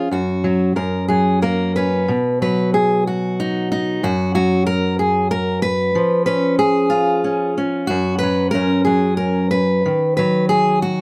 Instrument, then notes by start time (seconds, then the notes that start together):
steel-string acoustic guitar
Already playing: G#4
0.11 F#2 F#4
0.44 F#3
0.76 F#2 A#4
1.08 F#3 G#4
1.42 A#3 A#4
1.76 C#4 B4
2.08 B2
2.42 F#3 B4
2.74 G#4
3.07 F#4
3.40 D#4
3.72 D#4
4.03 F#2 F#4
4.35 F#3 F#4
4.67 A#4
4.99 G#4
5.31 A#4
5.62 B4
5.95 F3
6.26 C#4 B4
6.59 G#4
6.90 F4
7.24 C#4
7.58 C#4
7.87 F#2 F#4
8.19 B4
8.23 F#3
8.51 F#2 F#3 A#4
8.55 C#4
8.85 F#3 G#4
9.17 A#4
9.51 B4
9.86 D#3
10.17 F#3 B4
10.49 G#4
10.82 F#4